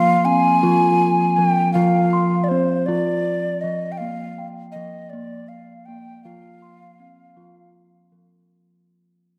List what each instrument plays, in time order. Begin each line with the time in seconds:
Already playing: steel tongue drum F3 F4 C6, recorder F5
0.25 steel tongue drum C4, recorder G#5
0.63 steel tongue drum F3 F4
1.36 steel tongue drum F3, recorder G5
1.73 steel tongue drum F3 F4, recorder F5
2.13 steel tongue drum C6
2.44 recorder D5
2.49 steel tongue drum C4, recorder C5
2.86 steel tongue drum F3 F4, recorder D5
3.61 steel tongue drum F3, recorder D#5
3.92 recorder G5
3.98 steel tongue drum A#3, recorder F5
4.38 steel tongue drum G5
4.72 steel tongue drum F3, recorder D#5
5.10 steel tongue drum A#3, recorder D5
5.48 recorder F5
5.86 steel tongue drum A#3, recorder G5
6.24 steel tongue drum F3 F4, recorder F5
6.62 steel tongue drum C6
7.00 steel tongue drum C4
7.37 steel tongue drum F3 F4
8.12 steel tongue drum F3